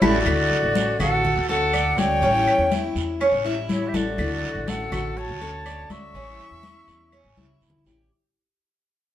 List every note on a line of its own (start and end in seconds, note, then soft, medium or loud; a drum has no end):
0.02 0.20 A1 medium
0.02 0.18 A3 medium
0.02 0.18 C#4 medium
0.02 0.18 E4 medium
0.02 0.99 F#4 medium
0.02 0.18 G4 medium
0.02 0.18 A4 medium
0.02 1.01 D5 medium
0.02 high conga medium
0.02 long guiro loud
0.02 claves medium
0.26 0.49 D2 loud
0.26 0.74 D3 medium
0.26 0.75 A3 medium
0.26 0.75 F#4 medium
0.26 high conga soft
0.26 long guiro medium
0.26 claves medium
0.51 high conga soft
0.63 0.98 A1 medium
0.75 1.23 D3 medium
0.75 1.23 A3 soft
0.75 1.24 C#4 medium
0.75 1.24 F#4 medium
0.75 high conga medium
0.75 short guiro medium
1.00 1.35 A1 loud
1.00 1.48 F#4 medium
1.00 1.45 A4 medium
1.00 1.46 F#5 medium
1.00 high conga soft
1.00 low conga medium
1.00 short guiro medium
1.00 claves medium
1.24 muted steel-string acoustic guitar stroke medium
1.24 high conga soft
1.24 low conga medium
1.24 long guiro medium
1.36 1.95 D2 medium
1.49 1.74 A3 medium
1.49 1.73 C#4 medium
1.49 1.73 F#4 medium
1.49 1.99 A4 loud
1.49 1.73 A4 medium
1.49 2.00 F#5 loud
1.49 high conga soft
1.73 1.97 D3 soft
1.73 1.98 A3 medium
1.73 1.98 C#4 medium
1.73 1.97 F#4 medium
1.73 2.21 D5 medium
1.73 high conga soft
1.73 short guiro medium
1.73 claves medium
1.97 2.21 D2 medium
1.97 2.23 A3 medium
1.97 2.22 C#4 medium
1.97 2.21 F#4 medium
1.97 2.96 C#5 medium
1.97 2.97 G5 loud
1.97 high conga medium
1.97 short guiro medium
2.22 2.46 A1 loud
2.22 2.70 E3 medium
2.22 2.71 G3 medium
2.22 2.70 C#4 medium
2.22 2.71 C#4 medium
2.22 2.71 E4 medium
2.22 high conga soft
2.22 long guiro medium
2.47 high conga soft
2.47 claves medium
2.58 2.94 E2 medium
2.71 3.19 E3 medium
2.71 3.20 G3 medium
2.71 3.20 C#4 medium
2.71 3.19 E4 medium
2.71 3.20 E4 medium
2.71 high conga medium
2.71 short guiro medium
2.96 3.31 E2 medium
2.96 high conga soft
2.96 short guiro medium
3.21 3.45 C#4 medium
3.21 muted steel-string acoustic guitar stroke medium
3.21 high conga soft
3.21 long guiro medium
3.21 claves medium
3.32 3.91 A1 loud
3.45 3.69 G3 medium
3.45 3.69 C#4 medium
3.45 3.68 E4 medium
3.45 3.93 E4 medium
3.45 high conga soft
3.69 3.93 E3 soft
3.69 3.94 G3 medium
3.69 3.94 C#4 medium
3.69 3.89 E4 medium
3.69 3.93 E4 medium
3.69 3.90 C#5 medium
3.69 high conga medium
3.69 short guiro medium
3.87 3.96 G4 medium
3.87 3.97 E5 medium
3.94 4.17 A1 medium
3.94 4.19 G3 medium
3.94 4.18 C#4 medium
3.94 4.18 E4 medium
3.94 4.70 F#4 medium
3.94 4.42 A4 medium
3.94 4.71 D5 medium
3.94 high conga medium
3.94 short guiro medium
4.18 4.42 D2 loud
4.18 4.66 D3 medium
4.18 4.67 A3 medium
4.18 4.68 F#4 medium
4.18 high conga soft
4.18 long guiro medium
4.18 claves medium
4.43 high conga soft
4.55 4.90 A1 medium
4.67 5.16 D3 medium
4.67 5.16 A3 medium
4.67 5.16 C#4 medium
4.67 5.17 F#4 medium
4.67 5.19 A4 medium
4.67 5.20 F#5 medium
4.67 high conga medium
4.67 short guiro medium
4.92 5.27 A1 loud
4.92 5.40 F#4 medium
4.92 high conga soft
4.92 low conga medium
4.92 short guiro medium
4.92 claves medium
5.16 5.92 C#5 medium
5.16 5.93 A5 medium
5.16 muted steel-string acoustic guitar stroke medium
5.16 high conga soft
5.16 long guiro medium
5.28 5.87 D2 loud
5.41 5.65 A3 medium
5.41 5.65 C#4 medium
5.41 5.65 F#4 medium
5.41 5.65 A4 medium
5.41 high conga soft
5.66 5.89 D3 soft
5.66 5.90 A3 medium
5.66 5.90 C#4 medium
5.66 5.88 F#4 medium
5.66 6.13 D5 medium
5.66 high conga soft
5.66 short guiro medium
5.66 claves medium
5.90 6.13 D2 medium
5.90 6.15 A3 medium
5.90 6.14 C#4 medium
5.90 6.14 F#4 medium
5.90 7.62 E5 loud
5.90 7.63 C#6 loud
5.90 high conga medium
5.90 short guiro medium
6.14 6.38 A1 loud
6.14 6.63 E3 medium
6.14 6.63 G3 medium
6.14 6.63 C#4 medium
6.14 6.64 E4 medium
6.14 high conga soft
6.14 long guiro medium
6.39 high conga soft
6.39 claves medium
6.51 6.86 E2 medium
6.63 7.12 E3 medium
6.63 7.12 G3 medium
6.63 7.12 C#4 medium
6.63 7.12 E4 medium
6.63 7.13 E4 medium
6.63 high conga medium
6.63 short guiro medium
6.87 7.23 E2 loud
6.87 high conga soft
6.87 short guiro medium
7.12 7.37 C#4 medium
7.12 muted steel-string acoustic guitar stroke medium
7.12 high conga soft
7.12 long guiro medium
7.12 claves medium
7.24 7.36 A1 loud
7.37 7.59 C#2 medium
7.37 7.61 G3 medium
7.37 7.61 C#4 medium
7.37 7.61 E4 medium
7.37 7.85 E4 medium
7.37 high conga medium
7.61 7.84 B1 medium
7.61 7.85 E3 medium
7.61 7.86 G3 medium
7.61 7.86 C#4 medium
7.61 7.85 E4 medium
7.61 short guiro medium
7.70 low conga loud
7.86 8.08 A1 medium
7.86 8.11 G3 medium
7.86 8.10 C#4 medium
7.86 8.10 E4 medium
7.86 8.10 G4 medium
7.86 low conga medium
7.86 short guiro medium